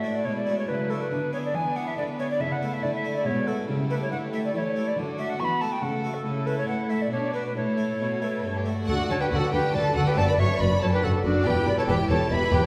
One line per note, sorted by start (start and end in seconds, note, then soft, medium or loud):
0.00 0.21 A2 soft
0.00 0.22 A2 medium
0.00 0.24 A3 soft
0.00 0.34 A3 soft
0.00 0.35 D4 soft
0.00 0.24 F#4 soft
0.00 0.35 F#4 soft
0.00 0.66 A4 soft
0.00 0.16 E5 medium
0.15 0.26 D5 medium
0.25 0.65 B2 soft
0.25 0.64 B2 soft
0.25 0.68 G#3 soft
0.25 1.09 E4 soft
0.25 0.36 C#5 medium
0.36 0.57 D5 medium
0.46 0.77 A3 soft
0.46 0.78 D4 soft
0.46 0.78 F#4 soft
0.58 0.69 C#5 medium
0.67 1.07 C#3 soft
0.67 1.08 C#3 soft
0.67 1.11 F#3 soft
0.67 1.10 A4 soft
0.67 0.91 B4 medium
0.90 1.05 A3 soft
0.90 1.06 D4 soft
0.90 1.06 F#4 soft
0.90 1.02 A4 medium
1.00 1.32 B4 medium
1.11 1.50 D3 soft
1.11 1.51 D3 medium
1.11 2.83 B3 medium
1.11 2.40 D4 soft
1.11 1.53 B4 soft
1.32 1.64 B3 soft
1.32 1.64 E4 soft
1.32 1.64 G#4 soft
1.32 1.38 C#5 medium
1.45 1.56 D5 medium
1.54 1.94 E3 medium
1.54 1.93 E3 soft
1.54 2.38 B4 soft
1.54 1.77 G#5 medium
1.76 2.07 B3 soft
1.76 2.07 E4 soft
1.76 2.07 G#4 soft
1.76 1.89 F#5 medium
1.87 1.96 E5 medium
1.97 2.37 D3 medium
1.97 2.36 D3 soft
1.97 2.03 D5 medium
2.19 2.34 B3 soft
2.19 2.35 E4 soft
2.19 2.35 G#4 soft
2.19 2.29 C#5 medium
2.30 2.42 D5 medium
2.40 2.79 C#3 soft
2.40 2.80 C#3 medium
2.40 3.24 E4 soft
2.40 3.26 A4 soft
2.40 2.53 E5 medium
2.52 2.75 F#5 medium
2.62 2.93 A3 soft
2.62 2.93 E4 soft
2.62 2.93 A4 soft
2.73 2.84 E5 medium
2.83 3.22 D3 soft
2.83 3.23 D3 medium
2.83 3.25 A3 medium
2.83 2.94 D5 medium
2.94 3.15 E5 medium
3.04 3.35 A3 soft
3.04 3.36 E4 soft
3.04 3.36 A4 soft
3.16 3.27 D5 medium
3.26 3.65 B2 soft
3.26 3.66 B2 medium
3.26 3.69 G#3 soft
3.26 3.69 F#4 soft
3.26 3.68 B4 medium
3.26 3.49 C#5 medium
3.47 3.63 A3 soft
3.47 3.63 E4 soft
3.47 3.58 A4 medium
3.47 3.63 A4 soft
3.68 4.07 C#3 soft
3.68 4.09 C#3 medium
3.68 4.12 G3 medium
3.68 4.53 E4 medium
3.68 4.11 A4 medium
3.90 4.21 A3 soft
3.90 4.21 G4 soft
3.90 4.21 A4 soft
3.90 3.95 B4 medium
4.01 4.11 C#5 medium
4.11 4.50 D3 soft
4.11 4.52 D3 medium
4.11 4.53 A3 medium
4.11 4.54 G4 medium
4.11 4.17 F#5 medium
4.33 4.64 A3 soft
4.33 4.64 G4 soft
4.33 4.64 A4 soft
4.33 4.38 E5 medium
4.45 4.54 D5 medium
4.54 4.93 E3 soft
4.54 4.94 E3 medium
4.54 4.96 A3 soft
4.54 4.97 E4 soft
4.54 4.96 A4 medium
4.54 4.89 C#5 medium
4.54 4.59 D5 medium
4.76 4.91 A3 soft
4.76 4.92 G4 soft
4.76 4.92 A4 soft
4.87 4.98 D5 medium
4.97 5.37 D3 medium
4.97 5.36 D3 soft
4.97 5.39 D4 medium
4.97 5.83 F#4 medium
4.97 5.81 A4 medium
5.18 5.33 A3 soft
5.18 5.49 F#4 soft
5.18 5.49 A4 soft
5.18 5.31 E5 medium
5.29 5.41 F#5 medium
5.40 5.78 E3 soft
5.40 5.79 E3 medium
5.40 5.82 B3 soft
5.40 5.45 C#6 medium
5.44 5.62 B5 medium
5.61 5.77 A3 soft
5.61 5.92 F#4 soft
5.61 5.93 A4 soft
5.61 5.74 A5 medium
5.72 5.83 G5 medium
5.82 6.21 C#3 soft
5.82 6.22 C#3 medium
5.82 6.25 A3 soft
5.82 6.25 F#4 medium
5.82 6.25 A4 soft
5.82 6.15 F#5 medium
6.04 6.19 A3 soft
6.04 6.19 F#4 soft
6.04 6.20 A4 soft
6.14 6.48 A4 medium
6.25 6.64 C#3 soft
6.25 6.65 C#3 medium
6.25 7.08 A3 medium
6.25 7.08 E4 medium
6.25 7.07 A4 medium
6.46 6.78 A3 soft
6.46 6.78 E4 soft
6.46 6.78 A4 soft
6.46 6.57 B4 medium
6.58 6.67 C#5 medium
6.67 7.08 A2 soft
6.67 7.11 A2 soft
6.67 6.91 F#5 medium
6.89 7.05 A3 soft
6.89 7.06 E4 soft
6.89 7.06 A4 soft
6.89 7.03 E5 medium
7.01 7.11 D5 medium
7.11 7.52 B2 soft
7.11 7.56 B2 soft
7.11 7.56 D4 soft
7.11 7.56 D4 medium
7.11 7.56 F#4 soft
7.11 7.33 C#5 medium
7.33 7.49 D4 soft
7.33 7.50 F#4 soft
7.33 7.45 B4 medium
7.46 7.55 B4 medium
7.55 7.96 A2 soft
7.55 8.00 A2 medium
7.55 8.65 A3 medium
7.55 7.95 E4 soft
7.55 8.65 A4 soft
7.55 8.63 C#5 medium
7.77 8.09 A3 soft
7.77 8.09 E4 soft
7.77 8.09 A4 soft
7.99 8.39 B2 soft
7.99 8.43 B2 soft
7.99 8.10 E4 medium
8.11 8.22 F#4 soft
8.21 8.53 A3 soft
8.21 8.54 E4 soft
8.21 8.54 A4 soft
8.21 8.44 B4 medium
8.43 8.86 G2 soft
8.43 8.83 G2 soft
8.43 8.55 A4 soft
8.56 8.66 G4 soft
8.65 8.81 A3 soft
8.65 8.81 E4 soft
8.65 8.86 F#4 medium
8.65 8.82 A4 soft
8.83 10.11 A3 medium
8.83 10.11 D4 medium
8.83 10.12 F#4 soft
8.87 8.95 D2 medium
8.87 9.07 D3 medium
8.87 8.96 D3 medium
8.87 9.08 F#4 medium
8.87 8.98 F#4 medium
8.87 8.94 A4 medium
8.87 9.08 F#5 loud
8.98 9.09 D4 soft
9.09 9.17 D2 medium
9.09 9.28 D3 medium
9.09 9.17 D3 medium
9.09 9.20 F#4 medium
9.09 9.20 A4 medium
9.09 9.22 C#5 medium
9.09 9.14 A5 medium
9.20 9.31 D4 soft
9.20 9.31 G4 medium
9.20 9.31 B4 medium
9.20 9.25 G5 medium
9.31 9.39 D2 medium
9.31 9.50 D3 medium
9.31 9.39 D3 medium
9.31 9.41 F#4 medium
9.31 9.52 F#4 medium
9.31 9.37 B4 medium
9.31 9.52 F#5 medium
9.36 9.52 A4 medium
9.41 9.52 D4 medium
9.52 9.61 D2 medium
9.52 9.71 D3 medium
9.52 9.61 D3 medium
9.52 9.63 F#4 medium
9.52 9.74 G4 medium
9.52 9.76 B4 medium
9.52 9.74 G5 medium
9.63 9.74 D4 soft
9.73 9.82 D2 medium
9.73 9.93 D3 medium
9.73 9.82 D3 medium
9.73 9.84 F#4 medium
9.73 9.95 A4 medium
9.73 9.95 D5 medium
9.73 9.95 A5 loud
9.85 9.95 D4 medium
9.95 10.04 D2 medium
9.95 10.14 D3 medium
9.95 10.03 D3 medium
9.95 10.06 F#4 medium
9.95 10.06 A4 medium
9.95 10.06 F#5 medium
10.06 10.17 D4 medium
10.06 10.17 G4 medium
10.06 10.19 B4 medium
10.06 10.17 G5 medium
10.12 11.39 A3 soft
10.12 11.40 D4 medium
10.12 11.41 F#4 medium
10.16 10.25 F#1 medium
10.16 10.36 F#2 medium
10.16 10.25 F#2 medium
10.16 10.27 F#4 medium
10.16 10.28 A4 medium
10.16 10.28 D5 medium
10.16 10.27 A5 loud
10.28 10.39 D4 medium
10.28 10.38 B4 medium
10.28 10.40 D5 medium
10.28 10.32 B5 medium
10.38 10.47 F#1 medium
10.38 10.58 F#2 medium
10.38 10.47 F#2 medium
10.38 10.49 F#4 medium
10.38 10.60 C#5 medium
10.38 10.62 E5 medium
10.38 10.59 C#6 medium
10.50 10.60 D4 medium
10.60 10.68 F#1 medium
10.60 10.68 F#2 medium
10.60 10.79 F#2 medium
10.60 10.70 F#4 medium
10.60 10.68 B4 medium
10.60 10.81 D5 medium
10.60 10.81 B5 loud
10.71 10.82 D4 medium
10.81 10.90 F#1 medium
10.81 11.01 F#2 medium
10.81 10.90 F#2 medium
10.81 10.92 F#4 medium
10.81 10.92 A4 medium
10.81 10.86 C#5 medium
10.81 10.92 A5 medium
10.92 11.03 D4 medium
10.92 11.03 G4 medium
10.92 11.05 B4 medium
10.92 11.03 G5 medium
11.03 11.11 F#1 medium
11.03 11.11 F#2 medium
11.03 11.22 F#2 medium
11.03 11.13 F#4 medium
11.03 11.11 F#4 medium
11.03 11.24 A4 medium
11.03 11.11 F#5 medium
11.14 11.24 D4 medium
11.24 11.33 F#1 medium
11.24 11.43 F#2 medium
11.24 11.33 F#2 medium
11.24 11.46 D4 medium
11.24 11.35 F#4 medium
11.24 11.48 F#4 medium
11.24 11.45 D5 medium
11.35 11.46 D4 medium
11.41 12.66 B3 soft
11.41 12.66 E4 medium
11.41 12.66 G4 soft
11.45 11.53 E1 medium
11.45 11.65 E2 medium
11.45 11.54 E2 medium
11.45 11.55 G4 medium
11.45 11.67 G4 medium
11.45 11.67 B4 medium
11.45 11.67 G5 loud
11.56 11.67 E4 soft
11.67 11.75 E1 medium
11.67 11.75 E2 medium
11.67 11.86 E2 medium
11.67 11.78 G4 medium
11.67 11.71 B4 medium
11.67 11.78 D5 medium
11.67 11.78 B5 medium
11.77 11.88 E4 medium
11.77 11.88 A4 medium
11.77 11.83 C#5 medium
11.77 11.82 A5 medium
11.87 11.96 E1 medium
11.87 11.96 E2 medium
11.87 12.08 E2 medium
11.87 11.98 G4 medium
11.87 12.10 G4 medium
11.87 11.95 B4 medium
11.87 12.09 G5 loud
11.99 12.10 E4 medium
12.09 12.18 E1 medium
12.09 12.17 E2 medium
12.09 12.29 E2 medium
12.09 12.20 G4 medium
12.09 12.31 A4 medium
12.09 12.33 C#5 medium
12.09 12.31 A5 medium
12.21 12.31 E4 medium
12.31 12.39 E1 medium
12.31 12.39 E2 medium
12.31 12.50 E2 medium
12.31 12.41 G4 medium
12.31 12.52 B4 medium
12.31 12.52 E5 medium
12.31 12.52 B5 loud
12.42 12.53 E4 medium
12.52 12.60 E1 medium
12.52 12.66 E2 medium
12.52 12.60 E2 medium
12.52 12.63 G4 medium
12.52 12.65 B4 medium
12.52 12.63 G5 medium
12.63 12.66 A4 medium